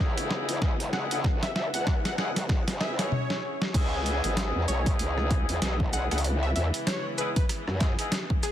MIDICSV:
0, 0, Header, 1, 7, 480
1, 0, Start_track
1, 0, Key_signature, 4, "minor"
1, 0, Tempo, 625000
1, 956, Time_signature, 4, 2, 24, 8
1, 6543, End_track
2, 0, Start_track
2, 0, Title_t, "Digital synth lead"
2, 0, Program_c, 0, 84
2, 717, Note_on_c, 0, 78, 85
2, 806, Note_off_c, 0, 78, 0
2, 858, Note_on_c, 0, 78, 77
2, 921, Note_off_c, 0, 78, 0
2, 1098, Note_on_c, 0, 76, 90
2, 1161, Note_off_c, 0, 76, 0
2, 1198, Note_on_c, 0, 76, 81
2, 1287, Note_off_c, 0, 76, 0
2, 1339, Note_on_c, 0, 78, 98
2, 1486, Note_off_c, 0, 78, 0
2, 1577, Note_on_c, 0, 78, 89
2, 1640, Note_off_c, 0, 78, 0
2, 1678, Note_on_c, 0, 78, 79
2, 1766, Note_off_c, 0, 78, 0
2, 2154, Note_on_c, 0, 76, 95
2, 2267, Note_off_c, 0, 76, 0
2, 2297, Note_on_c, 0, 73, 95
2, 2877, Note_off_c, 0, 73, 0
2, 3593, Note_on_c, 0, 73, 98
2, 3769, Note_off_c, 0, 73, 0
2, 4557, Note_on_c, 0, 78, 89
2, 4646, Note_off_c, 0, 78, 0
2, 4696, Note_on_c, 0, 78, 75
2, 4760, Note_off_c, 0, 78, 0
2, 4936, Note_on_c, 0, 76, 90
2, 5000, Note_off_c, 0, 76, 0
2, 5036, Note_on_c, 0, 76, 80
2, 5125, Note_off_c, 0, 76, 0
2, 5275, Note_on_c, 0, 73, 97
2, 5450, Note_off_c, 0, 73, 0
2, 5515, Note_on_c, 0, 71, 93
2, 5605, Note_off_c, 0, 71, 0
2, 5657, Note_on_c, 0, 71, 76
2, 5721, Note_off_c, 0, 71, 0
2, 6476, Note_on_c, 0, 68, 101
2, 6543, Note_off_c, 0, 68, 0
2, 6543, End_track
3, 0, Start_track
3, 0, Title_t, "Ambient pad"
3, 0, Program_c, 1, 92
3, 0, Note_on_c, 1, 61, 69
3, 0, Note_on_c, 1, 64, 86
3, 0, Note_on_c, 1, 68, 78
3, 2395, Note_off_c, 1, 61, 0
3, 2396, Note_off_c, 1, 64, 0
3, 2396, Note_off_c, 1, 68, 0
3, 6543, End_track
4, 0, Start_track
4, 0, Title_t, "Horn section"
4, 0, Program_c, 2, 61
4, 0, Note_on_c, 2, 59, 89
4, 0, Note_on_c, 2, 63, 79
4, 0, Note_on_c, 2, 64, 81
4, 0, Note_on_c, 2, 68, 97
4, 453, Note_off_c, 2, 59, 0
4, 453, Note_off_c, 2, 63, 0
4, 453, Note_off_c, 2, 64, 0
4, 453, Note_off_c, 2, 68, 0
4, 476, Note_on_c, 2, 59, 95
4, 476, Note_on_c, 2, 64, 84
4, 477, Note_on_c, 2, 63, 87
4, 477, Note_on_c, 2, 68, 103
4, 567, Note_off_c, 2, 59, 0
4, 567, Note_off_c, 2, 63, 0
4, 567, Note_off_c, 2, 64, 0
4, 567, Note_off_c, 2, 68, 0
4, 714, Note_on_c, 2, 59, 80
4, 714, Note_on_c, 2, 63, 74
4, 714, Note_on_c, 2, 64, 74
4, 715, Note_on_c, 2, 68, 91
4, 834, Note_off_c, 2, 59, 0
4, 834, Note_off_c, 2, 63, 0
4, 834, Note_off_c, 2, 64, 0
4, 834, Note_off_c, 2, 68, 0
4, 854, Note_on_c, 2, 59, 86
4, 854, Note_on_c, 2, 63, 76
4, 854, Note_on_c, 2, 64, 79
4, 855, Note_on_c, 2, 68, 97
4, 920, Note_off_c, 2, 59, 0
4, 920, Note_off_c, 2, 63, 0
4, 920, Note_off_c, 2, 64, 0
4, 920, Note_off_c, 2, 68, 0
4, 1676, Note_on_c, 2, 59, 99
4, 1676, Note_on_c, 2, 63, 94
4, 1676, Note_on_c, 2, 64, 91
4, 1676, Note_on_c, 2, 68, 107
4, 1767, Note_off_c, 2, 59, 0
4, 1767, Note_off_c, 2, 63, 0
4, 1767, Note_off_c, 2, 64, 0
4, 1767, Note_off_c, 2, 68, 0
4, 2156, Note_on_c, 2, 59, 87
4, 2156, Note_on_c, 2, 63, 79
4, 2156, Note_on_c, 2, 64, 82
4, 2156, Note_on_c, 2, 68, 93
4, 2247, Note_off_c, 2, 59, 0
4, 2247, Note_off_c, 2, 63, 0
4, 2247, Note_off_c, 2, 64, 0
4, 2247, Note_off_c, 2, 68, 0
4, 2296, Note_on_c, 2, 59, 98
4, 2296, Note_on_c, 2, 63, 84
4, 2296, Note_on_c, 2, 68, 104
4, 2297, Note_on_c, 2, 64, 85
4, 2396, Note_off_c, 2, 59, 0
4, 2396, Note_off_c, 2, 63, 0
4, 2396, Note_off_c, 2, 68, 0
4, 2397, Note_off_c, 2, 64, 0
4, 2877, Note_on_c, 2, 59, 106
4, 2877, Note_on_c, 2, 63, 93
4, 2877, Note_on_c, 2, 64, 97
4, 2877, Note_on_c, 2, 68, 114
4, 3556, Note_off_c, 2, 59, 0
4, 3556, Note_off_c, 2, 63, 0
4, 3556, Note_off_c, 2, 64, 0
4, 3556, Note_off_c, 2, 68, 0
4, 3597, Note_on_c, 2, 59, 89
4, 3598, Note_on_c, 2, 63, 81
4, 3598, Note_on_c, 2, 64, 84
4, 3598, Note_on_c, 2, 68, 97
4, 4293, Note_off_c, 2, 59, 0
4, 4293, Note_off_c, 2, 63, 0
4, 4293, Note_off_c, 2, 64, 0
4, 4293, Note_off_c, 2, 68, 0
4, 4316, Note_on_c, 2, 68, 100
4, 4317, Note_on_c, 2, 59, 92
4, 4317, Note_on_c, 2, 63, 87
4, 4317, Note_on_c, 2, 64, 85
4, 4407, Note_off_c, 2, 59, 0
4, 4407, Note_off_c, 2, 63, 0
4, 4407, Note_off_c, 2, 64, 0
4, 4407, Note_off_c, 2, 68, 0
4, 4556, Note_on_c, 2, 63, 75
4, 4556, Note_on_c, 2, 68, 90
4, 4557, Note_on_c, 2, 59, 82
4, 4557, Note_on_c, 2, 64, 72
4, 4675, Note_off_c, 2, 59, 0
4, 4675, Note_off_c, 2, 63, 0
4, 4675, Note_off_c, 2, 64, 0
4, 4675, Note_off_c, 2, 68, 0
4, 4696, Note_on_c, 2, 59, 89
4, 4696, Note_on_c, 2, 63, 82
4, 4696, Note_on_c, 2, 64, 79
4, 4696, Note_on_c, 2, 68, 95
4, 4761, Note_off_c, 2, 59, 0
4, 4761, Note_off_c, 2, 63, 0
4, 4761, Note_off_c, 2, 64, 0
4, 4761, Note_off_c, 2, 68, 0
4, 5516, Note_on_c, 2, 59, 98
4, 5516, Note_on_c, 2, 63, 94
4, 5517, Note_on_c, 2, 64, 94
4, 5517, Note_on_c, 2, 68, 111
4, 5607, Note_off_c, 2, 59, 0
4, 5607, Note_off_c, 2, 63, 0
4, 5607, Note_off_c, 2, 64, 0
4, 5607, Note_off_c, 2, 68, 0
4, 5996, Note_on_c, 2, 63, 80
4, 5997, Note_on_c, 2, 59, 88
4, 5997, Note_on_c, 2, 64, 80
4, 5997, Note_on_c, 2, 68, 97
4, 6087, Note_off_c, 2, 59, 0
4, 6087, Note_off_c, 2, 63, 0
4, 6087, Note_off_c, 2, 68, 0
4, 6088, Note_off_c, 2, 64, 0
4, 6135, Note_on_c, 2, 59, 94
4, 6135, Note_on_c, 2, 63, 85
4, 6135, Note_on_c, 2, 64, 84
4, 6135, Note_on_c, 2, 68, 104
4, 6241, Note_off_c, 2, 63, 0
4, 6241, Note_off_c, 2, 68, 0
4, 6242, Note_off_c, 2, 59, 0
4, 6242, Note_off_c, 2, 64, 0
4, 6543, End_track
5, 0, Start_track
5, 0, Title_t, "String section"
5, 0, Program_c, 3, 48
5, 0, Note_on_c, 3, 49, 73
5, 0, Note_on_c, 3, 52, 80
5, 0, Note_on_c, 3, 56, 66
5, 0, Note_on_c, 3, 59, 64
5, 2363, Note_off_c, 3, 52, 0
5, 2363, Note_off_c, 3, 59, 0
5, 2364, Note_off_c, 3, 49, 0
5, 2364, Note_off_c, 3, 56, 0
5, 2877, Note_on_c, 3, 49, 80
5, 2877, Note_on_c, 3, 56, 68
5, 2877, Note_on_c, 3, 59, 70
5, 2878, Note_on_c, 3, 52, 82
5, 6543, Note_off_c, 3, 49, 0
5, 6543, Note_off_c, 3, 52, 0
5, 6543, Note_off_c, 3, 56, 0
5, 6543, Note_off_c, 3, 59, 0
5, 6543, End_track
6, 0, Start_track
6, 0, Title_t, "Wobble bass"
6, 0, Program_c, 4, 39
6, 0, Note_on_c, 4, 37, 94
6, 353, Note_off_c, 4, 37, 0
6, 375, Note_on_c, 4, 40, 95
6, 459, Note_off_c, 4, 40, 0
6, 474, Note_on_c, 4, 35, 94
6, 833, Note_off_c, 4, 35, 0
6, 855, Note_on_c, 4, 37, 97
6, 1179, Note_off_c, 4, 37, 0
6, 1195, Note_on_c, 4, 40, 99
6, 1313, Note_off_c, 4, 40, 0
6, 1335, Note_on_c, 4, 40, 103
6, 1660, Note_off_c, 4, 40, 0
6, 1675, Note_on_c, 4, 37, 97
6, 2033, Note_off_c, 4, 37, 0
6, 2055, Note_on_c, 4, 40, 99
6, 2395, Note_off_c, 4, 40, 0
6, 2876, Note_on_c, 4, 37, 101
6, 3233, Note_off_c, 4, 37, 0
6, 3256, Note_on_c, 4, 32, 99
6, 3473, Note_off_c, 4, 32, 0
6, 3495, Note_on_c, 4, 40, 95
6, 3580, Note_off_c, 4, 40, 0
6, 3596, Note_on_c, 4, 35, 98
6, 3820, Note_off_c, 4, 35, 0
6, 3836, Note_on_c, 4, 37, 96
6, 4193, Note_off_c, 4, 37, 0
6, 4216, Note_on_c, 4, 40, 97
6, 4300, Note_off_c, 4, 40, 0
6, 4315, Note_on_c, 4, 35, 95
6, 4673, Note_off_c, 4, 35, 0
6, 4696, Note_on_c, 4, 37, 95
6, 5020, Note_off_c, 4, 37, 0
6, 5037, Note_on_c, 4, 40, 97
6, 5154, Note_off_c, 4, 40, 0
6, 5896, Note_on_c, 4, 42, 101
6, 6113, Note_off_c, 4, 42, 0
6, 6543, End_track
7, 0, Start_track
7, 0, Title_t, "Drums"
7, 134, Note_on_c, 9, 42, 56
7, 211, Note_off_c, 9, 42, 0
7, 235, Note_on_c, 9, 38, 84
7, 311, Note_off_c, 9, 38, 0
7, 374, Note_on_c, 9, 42, 69
7, 451, Note_off_c, 9, 42, 0
7, 474, Note_on_c, 9, 36, 96
7, 475, Note_on_c, 9, 38, 86
7, 551, Note_off_c, 9, 36, 0
7, 552, Note_off_c, 9, 38, 0
7, 615, Note_on_c, 9, 42, 56
7, 692, Note_off_c, 9, 42, 0
7, 714, Note_on_c, 9, 38, 92
7, 791, Note_off_c, 9, 38, 0
7, 854, Note_on_c, 9, 42, 67
7, 931, Note_off_c, 9, 42, 0
7, 955, Note_on_c, 9, 36, 98
7, 956, Note_on_c, 9, 38, 87
7, 1031, Note_off_c, 9, 36, 0
7, 1032, Note_off_c, 9, 38, 0
7, 1096, Note_on_c, 9, 38, 83
7, 1096, Note_on_c, 9, 42, 37
7, 1173, Note_off_c, 9, 38, 0
7, 1173, Note_off_c, 9, 42, 0
7, 1196, Note_on_c, 9, 38, 91
7, 1272, Note_off_c, 9, 38, 0
7, 1335, Note_on_c, 9, 42, 69
7, 1412, Note_off_c, 9, 42, 0
7, 1435, Note_on_c, 9, 36, 95
7, 1435, Note_on_c, 9, 38, 96
7, 1511, Note_off_c, 9, 36, 0
7, 1512, Note_off_c, 9, 38, 0
7, 1576, Note_on_c, 9, 38, 85
7, 1576, Note_on_c, 9, 42, 37
7, 1653, Note_off_c, 9, 38, 0
7, 1653, Note_off_c, 9, 42, 0
7, 1676, Note_on_c, 9, 38, 97
7, 1752, Note_off_c, 9, 38, 0
7, 1815, Note_on_c, 9, 38, 90
7, 1815, Note_on_c, 9, 42, 66
7, 1892, Note_off_c, 9, 38, 0
7, 1892, Note_off_c, 9, 42, 0
7, 1914, Note_on_c, 9, 36, 102
7, 1916, Note_on_c, 9, 38, 104
7, 1991, Note_off_c, 9, 36, 0
7, 1992, Note_off_c, 9, 38, 0
7, 2055, Note_on_c, 9, 38, 93
7, 2055, Note_on_c, 9, 42, 55
7, 2132, Note_off_c, 9, 38, 0
7, 2132, Note_off_c, 9, 42, 0
7, 2155, Note_on_c, 9, 38, 103
7, 2232, Note_off_c, 9, 38, 0
7, 2296, Note_on_c, 9, 38, 95
7, 2296, Note_on_c, 9, 42, 67
7, 2373, Note_off_c, 9, 38, 0
7, 2373, Note_off_c, 9, 42, 0
7, 2395, Note_on_c, 9, 48, 63
7, 2472, Note_off_c, 9, 48, 0
7, 2536, Note_on_c, 9, 38, 64
7, 2613, Note_off_c, 9, 38, 0
7, 2777, Note_on_c, 9, 38, 85
7, 2854, Note_off_c, 9, 38, 0
7, 2875, Note_on_c, 9, 36, 114
7, 2878, Note_on_c, 9, 42, 70
7, 2878, Note_on_c, 9, 49, 104
7, 2952, Note_off_c, 9, 36, 0
7, 2954, Note_off_c, 9, 42, 0
7, 2954, Note_off_c, 9, 49, 0
7, 3117, Note_on_c, 9, 42, 38
7, 3194, Note_off_c, 9, 42, 0
7, 3256, Note_on_c, 9, 42, 57
7, 3333, Note_off_c, 9, 42, 0
7, 3355, Note_on_c, 9, 38, 120
7, 3355, Note_on_c, 9, 42, 72
7, 3432, Note_off_c, 9, 38, 0
7, 3432, Note_off_c, 9, 42, 0
7, 3596, Note_on_c, 9, 42, 38
7, 3596, Note_on_c, 9, 82, 62
7, 3673, Note_off_c, 9, 42, 0
7, 3673, Note_off_c, 9, 82, 0
7, 3735, Note_on_c, 9, 36, 109
7, 3735, Note_on_c, 9, 42, 55
7, 3811, Note_off_c, 9, 42, 0
7, 3812, Note_off_c, 9, 36, 0
7, 3835, Note_on_c, 9, 42, 73
7, 3912, Note_off_c, 9, 42, 0
7, 3975, Note_on_c, 9, 37, 44
7, 4052, Note_off_c, 9, 37, 0
7, 4075, Note_on_c, 9, 36, 110
7, 4075, Note_on_c, 9, 37, 38
7, 4075, Note_on_c, 9, 42, 37
7, 4152, Note_off_c, 9, 36, 0
7, 4152, Note_off_c, 9, 37, 0
7, 4152, Note_off_c, 9, 42, 0
7, 4216, Note_on_c, 9, 42, 56
7, 4292, Note_off_c, 9, 42, 0
7, 4315, Note_on_c, 9, 38, 122
7, 4315, Note_on_c, 9, 42, 73
7, 4392, Note_off_c, 9, 38, 0
7, 4392, Note_off_c, 9, 42, 0
7, 4455, Note_on_c, 9, 36, 62
7, 4532, Note_off_c, 9, 36, 0
7, 4555, Note_on_c, 9, 42, 56
7, 4555, Note_on_c, 9, 82, 64
7, 4631, Note_off_c, 9, 42, 0
7, 4631, Note_off_c, 9, 82, 0
7, 4695, Note_on_c, 9, 37, 40
7, 4695, Note_on_c, 9, 42, 51
7, 4745, Note_off_c, 9, 42, 0
7, 4745, Note_on_c, 9, 42, 68
7, 4772, Note_off_c, 9, 37, 0
7, 4796, Note_off_c, 9, 42, 0
7, 4796, Note_on_c, 9, 42, 71
7, 4872, Note_off_c, 9, 42, 0
7, 5036, Note_on_c, 9, 42, 39
7, 5113, Note_off_c, 9, 42, 0
7, 5176, Note_on_c, 9, 42, 57
7, 5253, Note_off_c, 9, 42, 0
7, 5275, Note_on_c, 9, 38, 121
7, 5275, Note_on_c, 9, 42, 70
7, 5352, Note_off_c, 9, 38, 0
7, 5352, Note_off_c, 9, 42, 0
7, 5515, Note_on_c, 9, 42, 37
7, 5515, Note_on_c, 9, 82, 63
7, 5592, Note_off_c, 9, 42, 0
7, 5592, Note_off_c, 9, 82, 0
7, 5655, Note_on_c, 9, 36, 108
7, 5655, Note_on_c, 9, 42, 53
7, 5732, Note_off_c, 9, 36, 0
7, 5732, Note_off_c, 9, 42, 0
7, 5755, Note_on_c, 9, 37, 38
7, 5755, Note_on_c, 9, 42, 71
7, 5832, Note_off_c, 9, 37, 0
7, 5832, Note_off_c, 9, 42, 0
7, 5895, Note_on_c, 9, 37, 43
7, 5972, Note_off_c, 9, 37, 0
7, 5994, Note_on_c, 9, 38, 63
7, 5994, Note_on_c, 9, 42, 38
7, 5996, Note_on_c, 9, 36, 111
7, 6071, Note_off_c, 9, 38, 0
7, 6071, Note_off_c, 9, 42, 0
7, 6072, Note_off_c, 9, 36, 0
7, 6134, Note_on_c, 9, 42, 57
7, 6210, Note_off_c, 9, 42, 0
7, 6235, Note_on_c, 9, 38, 126
7, 6235, Note_on_c, 9, 42, 73
7, 6311, Note_off_c, 9, 38, 0
7, 6311, Note_off_c, 9, 42, 0
7, 6375, Note_on_c, 9, 36, 65
7, 6452, Note_off_c, 9, 36, 0
7, 6475, Note_on_c, 9, 37, 38
7, 6475, Note_on_c, 9, 42, 59
7, 6475, Note_on_c, 9, 82, 64
7, 6543, Note_off_c, 9, 37, 0
7, 6543, Note_off_c, 9, 42, 0
7, 6543, Note_off_c, 9, 82, 0
7, 6543, End_track
0, 0, End_of_file